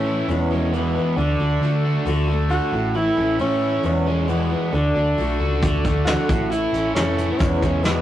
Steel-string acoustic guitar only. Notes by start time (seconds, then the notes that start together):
Already playing: A2 E3 A3 C#4 E4
0.29 E2 B2 E3 G#3 B3 E4
0.50 E3 G#3 B3 E4
0.74 E2 B2 E3 G#3 B3 E4
0.95 E3 G#3 B3 E4
1.17 D3 A3 D4 F#4
1.40 A3 D4 F#4
1.63 D3 A3 D4 F#4
2.06 D3 A3 D4 F#4
2.28 A3 D4 F#4
2.50 D3 A3 D4 F#4
2.73 A3 C#4 E4
2.95 E3 A3 C#4 E4
3.17 A3 C#4 E4
3.39 A2 E3 A3 C#4 E4
3.83 E2 B2 E3 G#3 B3 E4
4.06 E3 G#3 B3 E4
4.28 E2 B2 E3 G#3 B3 E4
4.51 E3 G#3 B3 E4
4.73 D3 A3 D4 F#4
4.96 A3 D4 F#4
5.18 D3 A3 D4 F#4
5.62 D3 A3 D4 F#4
5.83 A3 D4 F#4
6.06 D3 A3 D4 F#4
6.29 A3 E4
6.50 E3 A3 C#4 E4
6.73 A3 C#4 E4
6.95 A2 E3 A3 C#4 E4
7.39 E2 B2 E3 G#3 B3 E4
7.60 E3 G#3 B3 E4
7.83 E2 B2 E3 G#3 B3 E4